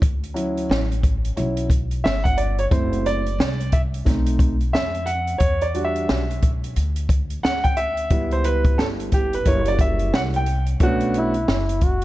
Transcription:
0.02 D2, kick, closed hi-hat
0.24 closed hi-hat
0.34 F#3 C#4 E4, closed hi-hat
0.57 closed hi-hat
0.70 A1, snare
0.92 closed hi-hat
1.03 kick, closed hi-hat
1.25 closed hi-hat
1.36 B1 F#3 C#4 E4, closed hi-hat
1.57 closed hi-hat
1.70 kick, closed hi-hat
1.91 closed hi-hat
2.04 G1 E5, snare
2.24 F#5, kick, closed hi-hat
2.37 D5, closed hi-hat
2.58 C#5, closed hi-hat
2.71 F#1 A3 C4 E4 C5, kick, closed hi-hat
2.93 closed hi-hat
3.06 D5, closed hi-hat
3.26 closed hi-hat
3.39 C2, snare
3.60 closed hi-hat
3.72 E5, kick, closed hi-hat
3.94 closed hi-hat
4.05 B1 A3 C4 D#4, kick, snare, closed hi-hat
4.26 closed hi-hat
4.39 kick, closed hi-hat
4.61 closed hi-hat
4.73 F2 E5, snare
4.94 closed hi-hat
5.06 F#5, closed hi-hat
5.27 closed hi-hat
5.38 E2 C#5, kick, closed hi-hat
5.61 D5, closed hi-hat
5.74 G3 D4 F#4, closed hi-hat
5.85 E5
5.96 closed hi-hat
6.09 B1, snare
6.31 closed hi-hat
6.42 kick, closed hi-hat
6.64 closed hi-hat
6.76 D2, closed hi-hat
6.96 closed hi-hat
7.09 kick, closed hi-hat
7.30 closed hi-hat
7.43 D2 F#5, snare
7.64 G5, kick, closed hi-hat
7.77 E5, closed hi-hat
7.97 closed hi-hat
8.10 C#2 G3 B3 E4, kick, closed hi-hat
8.31 C5, closed hi-hat
8.44 B4, closed hi-hat
8.65 kick, closed hi-hat
8.78 G1 A4, snare
9.00 closed hi-hat
9.12 G4, kick, closed hi-hat
9.33 B4, closed hi-hat
9.45 F#1 G3 A#3 E4 C#5, kick, closed hi-hat
9.65 D5, closed hi-hat
9.79 E5, kick, closed hi-hat
9.99 closed hi-hat
10.14 C2 F#5, snare
10.34 G5, closed hi-hat
10.46 closed hi-hat
10.66 closed hi-hat
10.80 B1 A3 B3 C#4 D4 F#4, kick, closed hi-hat
11.00 closed hi-hat
11.14 E4, closed hi-hat
11.34 closed hi-hat
11.48 F#1, snare
11.69 closed hi-hat
11.81 F#4, kick, closed hi-hat

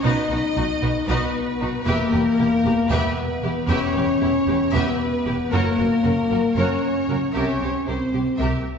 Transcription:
0.04 B1 B2 D#4 F#4 B4 D#5
0.30 B1 B2 D#4 F#4 B4
0.56 B1 B2 D#4 F#4
0.82 B1 B2 D#4 F#4 B4
1.07 B1 B2 B3 D#4 F#4 B4 D#5
1.60 B1 B2 D#4 F#4
1.85 E1 E2 A#3 G4 A#4 B4 E5
2.12 E1 E2 G4 B4
2.38 E1 E2 E4 G4
2.65 E1 E2 G4 B4
2.90 E1 E2 B3 G4 B4 E5
3.43 E1 E2 E4 G4
3.69 E1 E2 C#4 G4 B4 C#5 E5
3.96 E1 E2 G4 B4
4.22 E1 E2 E4 G4
4.47 E1 E2 G4 B4
4.73 E1 E2 B3 G4 B4 E5
5.26 E1 E2 E4 G4
5.51 F#1 F#2 A#3 F#4 A#4 C#5
5.78 F#1 F#2 F#4 A#4
6.04 F#1 F#2 C#4 F#4 A#4
6.31 F#1 F#2 F#4 A#4
6.56 F#1 F#2 C#4 F#4 A#4 C#5
7.09 F#1 F#2 C#4 F#4 A#4
7.34 C2 C3 C#4 G4 A#4 C#5 E5
7.61 C2 C3 G4 C5
7.87 C2 C3 C4 E4 G4 A#4 C5
8.13 C2 C3 G4 C5
8.39 C2 C3 G4 A#4 E5

